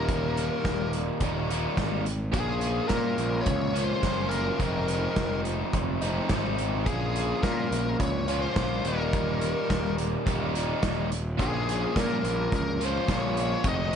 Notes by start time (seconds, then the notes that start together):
Already playing: D#1 D#2 A#2 D#3 G3 A#3 D#4 A#4
0.09 kick, closed hi-hat
0.37 closed hi-hat
0.64 D#1, kick, snare, closed hi-hat
0.93 closed hi-hat
1.20 D#1 D#2 A#2 D#3 G3 A#3, kick, closed hi-hat
1.24 D#4
1.50 D#2 A#2 D#3 G3 A#3 D#4, closed hi-hat
1.77 G#1, kick, snare, closed hi-hat
2.06 closed hi-hat
2.32 A#1 A#2 F3 A#3 C#4 F4 G#4, kick, closed hi-hat
2.61 closed hi-hat
2.88 A#2 A#4, kick, snare, closed hi-hat
3.18 A#1, closed hi-hat
3.41 C#5
3.46 C#2, kick, closed hi-hat
3.74 A#2 F3 A#3 C#4 F4, closed hi-hat
3.84 C5
4.02 F#1 A#2 F3 A#3 C#4 F4, kick, snare, closed hi-hat
4.28 A#4, closed hi-hat
4.59 F1 F2 C3 F3 G#3 C4 D#4, kick, closed hi-hat
4.88 closed hi-hat
5.16 F1, kick, snare, closed hi-hat
5.45 closed hi-hat
5.73 F1, kick, closed hi-hat
6.01 F2 C3 F3 G#3 C4 D#4, closed hi-hat
6.29 G#1 F2 C3 F3 G#3 C4 D#4, kick, snare, closed hi-hat
6.58 closed hi-hat
6.86 A#1 A#2 F3 A#3 C#4 F4 G#4, kick, closed hi-hat
7.16 closed hi-hat
7.43 A#2 A#4, kick, snare, closed hi-hat
7.71 A#1, closed hi-hat
7.99 C#2 C#5, kick, closed hi-hat
8.28 A#2 F3 A#3 C#4 F4, closed hi-hat
8.42 C5
8.56 A#1 A#2 F3 A#3 C#4 F4, kick, snare, closed hi-hat
8.83 D#1 D#2 A#2 D#3 A#3 A#4, closed hi-hat
8.88 G3 D#4
9.13 kick, closed hi-hat
9.41 closed hi-hat
9.70 D#1, kick, snare, closed hi-hat
9.98 closed hi-hat
10.26 D#1 D#2 A#2 D#3 G3 A#3 D#4, kick, closed hi-hat
10.54 D#2 A#2 D#3 G3 A#3 D#4, closed hi-hat
10.83 D#1, kick, snare, closed hi-hat
11.12 closed hi-hat
11.38 A#1 A#2 F3 A#3 C#4 F4, kick, closed hi-hat
11.42 G#4
11.69 closed hi-hat
11.96 A#2, kick, snare, closed hi-hat
12.00 A#4
12.23 A#1, closed hi-hat
12.52 C#2, kick, closed hi-hat
12.56 A#4
12.80 A#2 F3 A#3 C#4 F4, closed hi-hat
12.85 C5
13.08 A#1 A#2 F3 A#3 C#4 F4, kick, snare, closed hi-hat
13.13 C#5
13.37 closed hi-hat
13.64 F1 F2 C3 F3 G#3 C4 D#4, kick, closed hi-hat
13.69 D#5